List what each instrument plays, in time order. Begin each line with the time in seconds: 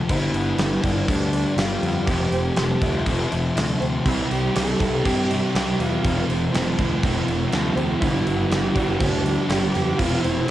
Already playing: distorted electric guitar F3
0.09 fingered electric bass G1, distorted electric guitar G2 D3 G3, twelve-string acoustic guitar F3, clean electric guitar E4, kick, crash
0.34 fingered electric bass G1, twelve-string acoustic guitar B3, crash
0.58 fingered electric bass G1, distorted electric guitar G2 D3 G3, twelve-string acoustic guitar G4, snare, crash
0.83 fingered electric bass G1, distorted electric guitar D3 G3, twelve-string acoustic guitar D4, kick, crash
1.07 fingered electric bass D2, distorted electric guitar G2 D3 G3, twelve-string acoustic guitar F3, clean electric guitar D4, kick, crash
1.33 distorted electric guitar D3 G3, twelve-string acoustic guitar D4, crash
1.56 fingered electric bass G1, distorted electric guitar G2 D3 G3, clean electric guitar F4, twelve-string acoustic guitar G4, snare, crash
1.82 fingered electric bass F2, twelve-string acoustic guitar B3, crash
2.06 fingered electric bass F1, distorted electric guitar F2 C3 F3, twelve-string acoustic guitar F3, clean electric guitar G4, kick, crash
2.32 fingered electric bass F1, twelve-string acoustic guitar C4, crash
2.56 fingered electric bass F1, distorted electric guitar F2 C3, twelve-string acoustic guitar A4, snare, crash
2.61 distorted electric guitar F3
2.81 fingered electric bass D2, distorted electric guitar C3 F3, twelve-string acoustic guitar E4, kick, crash
3.06 fingered electric bass F1, distorted electric guitar F2 C3, twelve-string acoustic guitar F3, kick, crash
3.10 distorted electric guitar F3
3.31 fingered electric bass F1, distorted electric guitar F3, twelve-string acoustic guitar E4, crash
3.36 distorted electric guitar C3
3.56 fingered electric bass D2, distorted electric guitar F2 C3, twelve-string acoustic guitar A4, snare, crash
3.60 distorted electric guitar F3
3.80 fingered electric bass D2, twelve-string acoustic guitar C4, crash
4.05 fingered electric bass C2, overdriven electric guitar C3 E3 G3 C4 E4, distorted electric guitar C3 G3 C4, twelve-string acoustic guitar G3, clean electric guitar E4, kick, crash
4.31 fingered electric bass C2, clean electric guitar G4, crash
4.54 fingered electric bass C2, distorted electric guitar C3 G3 C4, overdriven electric guitar E3 G3 C4, twelve-string acoustic guitar G4, clean electric guitar A4, snare, crash
4.59 overdriven electric guitar E4
4.79 fingered electric bass C2, distorted electric guitar G3 C4, overdriven electric guitar C4 E4, twelve-string acoustic guitar E4, kick, crash
4.84 overdriven electric guitar G3
5.04 fingered electric bass G2, distorted electric guitar C3 G3 C4, overdriven electric guitar E3 G3 C4, twelve-string acoustic guitar G3, clean electric guitar G4, kick, crash
5.09 overdriven electric guitar E4
5.30 distorted electric guitar G3 C4, twelve-string acoustic guitar E4, crash
5.53 fingered electric bass C2, overdriven electric guitar C3 E3 G3 C4 E4, distorted electric guitar C3, clean electric guitar G4, twelve-string acoustic guitar G4, snare, crash
5.57 distorted electric guitar G3 C4
5.78 fingered electric bass E2, overdriven electric guitar G3 C4 E4, twelve-string acoustic guitar B3, clean electric guitar F4, crash
6.03 fingered electric bass F1, distorted electric guitar F2 C3 F3, overdriven electric guitar F2 C3 F3 A3 C4 F4, kick, crash
6.29 fingered electric bass F1, twelve-string acoustic guitar C4, crash
6.53 fingered electric bass F1, distorted electric guitar F2 C3 F3, overdriven electric guitar F3 A3 C4 F4, twelve-string acoustic guitar A4, snare, crash
6.77 fingered electric bass D2, distorted electric guitar C3 F3, overdriven electric guitar A3 C4 F4, kick, crash
6.82 overdriven electric guitar F3
7.02 fingered electric bass F1, distorted electric guitar F2 C3 F3, overdriven electric guitar F3 A3 C4, kick, crash
7.06 overdriven electric guitar F4
7.26 fingered electric bass F1, distorted electric guitar C3 F3, crash
7.51 fingered electric bass D2, distorted electric guitar F2 C3 F3, overdriven electric guitar F2 C3 F3 A3 C4 F4, twelve-string acoustic guitar A4, snare, crash
7.75 fingered electric bass D2, overdriven electric guitar A3 C4 F4, twelve-string acoustic guitar C4, crash
7.80 overdriven electric guitar F3
8.00 fingered electric bass G1, distorted electric guitar G2 D3 G3, overdriven electric guitar G2 D3 F3 G3, twelve-string acoustic guitar F3, clean electric guitar E4, kick, crash
8.04 overdriven electric guitar B3 G4
8.25 fingered electric bass G1, twelve-string acoustic guitar B3, crash
8.50 fingered electric bass G1, distorted electric guitar G2 D3, overdriven electric guitar F3 G3 B3 G4, twelve-string acoustic guitar G4, snare, crash
8.54 distorted electric guitar G3
8.74 fingered electric bass G1, distorted electric guitar D3 G3, overdriven electric guitar F3 G3 B3 G4, twelve-string acoustic guitar D4, kick, crash
8.99 fingered electric bass D2, distorted electric guitar G2 D3 G3, overdriven electric guitar F3 G3 B3 G4, twelve-string acoustic guitar F3, clean electric guitar D4, kick, crash
9.24 distorted electric guitar D3 G3, twelve-string acoustic guitar D4, crash
9.48 fingered electric bass G1, overdriven electric guitar G2 D3 F3 G3 B3 G4, distorted electric guitar G2 D3, clean electric guitar G4, twelve-string acoustic guitar G4, snare, crash
9.52 distorted electric guitar G3
9.72 fingered electric bass F2, twelve-string acoustic guitar B3, overdriven electric guitar B3 G4, clean electric guitar G4, crash
9.77 overdriven electric guitar F3 G3
9.97 fingered electric bass F1, distorted electric guitar F2 C3 F3, overdriven electric guitar F2 C3 F3 A3 C4, twelve-string acoustic guitar F3, clean electric guitar F4, kick, crash
10.02 overdriven electric guitar F4
10.22 fingered electric bass F1, twelve-string acoustic guitar C4, clean electric guitar E4, crash
10.46 distorted electric guitar F2, twelve-string acoustic guitar A4